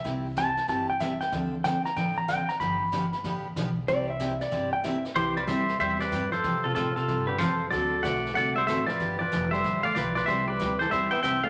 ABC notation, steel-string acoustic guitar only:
X:1
M:4/4
L:1/8
Q:"Swing" 1/4=188
K:C
V:1 name="Steel-string acoustic guitar"
[C,G,CEG] z [C,G,CEG] z [C,G,CEG] z [C,G,CEG] z | [D,F,CDA] z [D,F,CDA] z [D,F,CDA] z [D,F,CDA] z | [D,F,B,DG] z [D,F,B,DG] z [D,F,B,DG] z [D,F,B,DG] z | [C,G,CEG] z [C,G,CEG] z [C,G,CEG] z [C,G,CEG] z |
[C,G,CEG] z [C,G,CEG] z [C,G,CEG] z [C,G,CEG] z | [C,F,G,CFA] z [C,F,G,CFA] z [C,F,G,CFA] z [C,F,G,CFA] z | [D,A,C^FA] z [D,A,CFA] z [D,A,CFA] z [D,A,CFA] z | [D,F,B,DG] z [D,F,B,DG] z [D,F,B,DG] z [D,F,B,DG] z |
[C,G,CEG] z [C,G,CEG] z [C,G,CEG] z [C,G,CEG] z |]